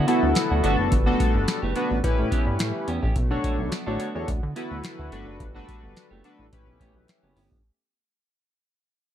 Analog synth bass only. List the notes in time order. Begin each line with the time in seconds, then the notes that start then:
0.23 D2
0.51 D2
0.64 G1
0.79 F#1
0.92 G1
1.35 G1
1.63 F#1
1.91 A1
2.04 A1
2.19 A2
2.47 G2
2.60 A2
2.88 E2
3.03 A1
3.16 B1
3.59 B1
3.87 A1
4.15 E2
4.28 D2
4.43 D3
4.71 D2
4.99 D2
5.12 G1
5.27 F#1
5.40 G1
5.83 G1
6.11 F#1
6.39 A1
6.52 A1
6.67 B1
6.80 A1
6.95 B1
7.23 F#1
7.37 G1
7.51 G1